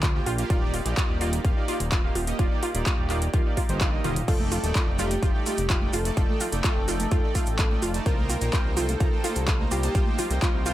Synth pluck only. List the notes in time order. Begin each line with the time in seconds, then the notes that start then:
0.03 F4
0.27 F4
0.50 F4
0.74 F4
0.97 F4
1.21 F4
1.45 F4
1.68 F4
1.92 F4
2.15 F4
2.39 F4
2.63 F4
2.86 F4
3.10 F4
3.34 F4
3.57 F4
3.81 F4
4.04 F4
4.28 F4
4.52 F4
4.75 F4
4.99 F4
5.23 F4
5.46 F4
5.70 F4
5.93 F4
6.17 F4
6.41 F4
6.64 F4
6.88 F4
7.11 F4
7.35 F4
7.59 F4
7.82 F4
8.06 F4
8.30 F4
8.53 F4
8.77 F4
9.00 F4
9.24 F4
9.48 F4
9.71 F4
9.95 F4
10.19 F4
10.42 F4
10.66 F4